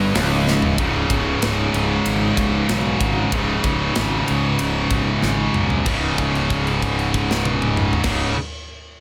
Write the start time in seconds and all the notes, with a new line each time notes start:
Already playing: G1 G2 C#3 C#4 E4 G#4
0.15 C#1 C#2, snare, open hi-hat
0.48 snare
0.62 floor tom
0.78 C#1 C#2 G#2 C#3, kick, ride
1.10 C#1, kick, ride
1.42 C#1, snare, ride
1.74 C#1, ride
2.06 G#1, ride
2.37 C#1, kick, ride
2.69 B1, snare, ride
3.01 G#1, kick, ride
3.32 C#1 C#2 G#2, kick, ride
3.36 C#3
3.64 C#1, kick, ride
3.95 G#1, snare, ride
4.28 C#2, ride
4.59 C#1, ride
4.90 C#1, kick, ride
5.22 G#1, snare
5.54 B1, mid tom
5.70 floor tom
5.86 C#1 C#2 G#2 C#3, kick, crash
6.18 kick, crash
6.35 crash
6.50 kick, crash
6.67 crash
6.82 kick, crash
6.99 crash
7.14 kick, crash
7.31 snare
7.45 high tom
7.62 mid tom
7.77 mid tom
7.93 floor tom
8.03 C#1 C#2 G#2, kick, snare, crash
8.07 C#3